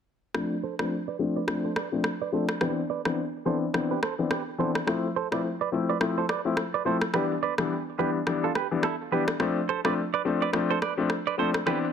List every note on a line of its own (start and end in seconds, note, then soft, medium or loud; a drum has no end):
0.34 0.52 F3 medium
0.34 0.52 A3 medium
0.34 0.52 C4 medium
0.34 0.52 D4 loud
0.34 cross-stick medium
0.63 0.74 A4 medium
0.63 0.74 C5 medium
0.79 0.92 F3 medium
0.79 0.92 A3 medium
0.79 0.92 C4 medium
0.79 0.92 D4 medium
0.79 0.88 B4 medium
0.79 0.87 D5 medium
0.79 cross-stick medium
1.08 1.16 B4 medium
1.08 1.15 D5 medium
1.19 1.36 F3 medium
1.19 1.36 A3 medium
1.19 1.36 C4 medium
1.19 1.37 D4 medium
1.36 1.44 B4 medium
1.36 1.44 D5 medium
1.47 1.65 F3 medium
1.47 1.65 A3 medium
1.47 1.65 C4 medium
1.47 1.65 D4 medium
1.47 cross-stick medium
1.65 1.73 A4 medium
1.65 1.72 C5 medium
1.76 1.88 B4 medium
1.76 1.87 D5 medium
1.76 cross-stick medium
1.92 2.05 F3 medium
1.92 2.05 A3 medium
1.92 2.05 C4 medium
1.92 2.05 D4 medium
2.04 cross-stick medium
2.22 2.30 B4 medium
2.22 2.29 D5 medium
2.32 2.50 F3 medium
2.32 2.50 A3 medium
2.32 2.50 C4 medium
2.32 2.50 D4 medium
2.32 2.44 A4 medium
2.32 2.44 C5 medium
2.49 cross-stick loud
2.61 2.78 E3 medium
2.61 2.78 B3 medium
2.61 2.78 C4 medium
2.61 2.78 D4 loud
2.61 2.73 G4 medium
2.61 2.72 B4 medium
2.61 cross-stick medium
2.90 3.01 B4 medium
2.90 3.00 D5 medium
3.05 3.18 E3 medium
3.05 3.18 B3 medium
3.05 3.19 C4 medium
3.05 3.19 D4 medium
3.05 cross-stick medium
3.45 3.63 E3 medium
3.45 3.63 B3 medium
3.45 3.63 C4 medium
3.45 3.63 D4 medium
3.45 3.57 A4 medium
3.45 3.57 C5 medium
3.74 3.91 E3 medium
3.74 3.91 B3 medium
3.74 3.91 C4 medium
3.74 3.91 D4 medium
3.74 cross-stick medium
3.91 3.99 G4 medium
3.91 3.99 B4 medium
4.03 4.14 A4 medium
4.03 4.13 C5 medium
4.03 cross-stick medium
4.19 4.32 E3 medium
4.19 4.32 B3 medium
4.19 4.32 C4 medium
4.19 4.32 D4 medium
4.31 4.42 G4 medium
4.31 4.42 B4 medium
4.31 cross-stick medium
4.58 4.76 E3 medium
4.58 4.76 B3 medium
4.58 4.76 C4 medium
4.58 4.76 D4 medium
4.58 4.71 A4 medium
4.58 4.70 C5 medium
4.75 cross-stick medium
4.87 5.04 F3 medium
4.87 5.04 A3 medium
4.87 5.04 C4 medium
4.87 5.04 E4 loud
4.87 cross-stick medium
5.16 5.27 A4 medium
5.16 5.27 C5 medium
5.31 5.45 F3 medium
5.31 5.45 A3 medium
5.31 5.45 C4 medium
5.31 5.45 E4 medium
5.31 5.41 B4 medium
5.31 5.40 D5 medium
5.31 cross-stick medium
5.61 5.69 B4 medium
5.61 5.69 D5 medium
5.72 5.89 F3 medium
5.72 5.89 A3 medium
5.72 5.89 C4 medium
5.72 5.90 E4 medium
5.89 5.98 B4 medium
5.89 5.97 D5 medium
6.00 6.18 F3 medium
6.00 6.18 A3 medium
6.00 6.18 C4 medium
6.00 6.18 E4 loud
6.00 cross-stick medium
6.18 6.26 A4 medium
6.18 6.25 C5 medium
6.29 6.40 B4 medium
6.29 6.40 D5 medium
6.29 cross-stick medium
6.45 6.58 F3 medium
6.45 6.58 A3 medium
6.45 6.58 C4 medium
6.45 6.58 E4 medium
6.57 cross-stick medium
6.74 6.82 B4 medium
6.74 6.82 D5 medium
6.85 7.02 F3 medium
6.85 7.03 A3 medium
6.85 7.03 C4 medium
6.85 7.03 E4 medium
6.85 6.97 A4 medium
6.85 6.97 C5 medium
7.02 cross-stick medium
7.13 7.31 E3 medium
7.13 7.31 G3 medium
7.13 7.31 B3 medium
7.13 7.31 D4 loud
7.13 7.25 G4 medium
7.13 7.25 B4 medium
7.13 cross-stick medium
7.43 7.54 B4 medium
7.43 7.53 D5 medium
7.58 7.71 E3 medium
7.58 7.71 G3 medium
7.58 7.71 B3 medium
7.58 7.71 D4 medium
7.58 cross-stick medium
7.98 8.16 E3 medium
7.98 8.16 G3 medium
7.98 8.16 B3 medium
7.98 8.16 D4 medium
7.98 8.10 G4 medium
7.98 8.10 B4 medium
8.27 8.44 E3 medium
8.27 8.44 G3 medium
8.27 8.44 B3 medium
8.27 8.44 D4 medium
8.27 cross-stick medium
8.44 8.52 F4 medium
8.44 8.52 A4 medium
8.55 8.67 G4 medium
8.55 8.66 B4 medium
8.55 cross-stick medium
8.71 8.84 E3 medium
8.71 8.85 G3 medium
8.71 8.85 B3 medium
8.71 8.85 D4 medium
8.83 8.95 E4 medium
8.83 8.95 A4 medium
8.83 cross-stick medium
9.12 9.29 E3 medium
9.12 9.29 G3 medium
9.12 9.29 B3 medium
9.12 9.29 D4 medium
9.12 9.23 G4 medium
9.12 9.23 B4 medium
9.28 cross-stick loud
9.40 9.57 F3 medium
9.40 9.57 A3 medium
9.40 9.57 C4 medium
9.40 9.57 D4 loud
9.40 cross-stick medium
9.69 9.80 A4 medium
9.69 9.80 C5 medium
9.84 9.98 F3 medium
9.84 9.98 A3 medium
9.84 9.98 C4 medium
9.84 9.98 D4 medium
9.84 9.93 B4 medium
9.84 9.93 D5 medium
9.84 cross-stick medium
10.14 10.22 B4 medium
10.14 10.21 D5 medium
10.25 10.42 F3 medium
10.25 10.42 A3 medium
10.25 10.42 C4 medium
10.25 10.42 D4 medium
10.42 10.50 B4 medium
10.42 10.50 D5 medium
10.53 10.70 F3 medium
10.53 10.70 A3 medium
10.53 10.70 C4 medium
10.53 10.71 D4 medium
10.53 cross-stick medium
10.71 10.79 A4 medium
10.71 10.78 C5 medium
10.82 10.93 B4 medium
10.82 10.93 D5 medium
10.82 cross-stick medium
10.97 11.11 F3 medium
10.97 11.11 A3 medium
10.97 11.11 C4 medium
10.97 11.11 D4 medium
11.10 cross-stick medium
11.27 11.35 B4 medium
11.27 11.35 D5 medium
11.38 11.55 F3 medium
11.38 11.55 A3 medium
11.38 11.55 C4 medium
11.38 11.55 D4 medium
11.38 11.50 A4 medium
11.38 11.49 C5 medium
11.54 cross-stick loud
11.66 11.83 E3 medium
11.66 11.83 B3 medium
11.66 11.84 C4 medium
11.66 11.84 D4 loud
11.66 11.78 G4 medium
11.66 11.78 B4 loud
11.66 cross-stick medium